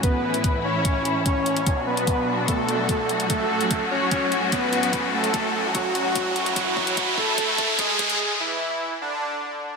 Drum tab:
HH |x--xx---x-x-x-xx|x--xx---x-x-x-xx|x--xx---x-x-x-xx|x--xx---x-x-x-xx|
BD |o---o---o---o---|o---o---o---o---|o---o---o---o---|o---o---o---o---|

HH |x--xx---x-x-x-xx|----------------|
BD |o-o-o-o-o-o-o-o-|----------------|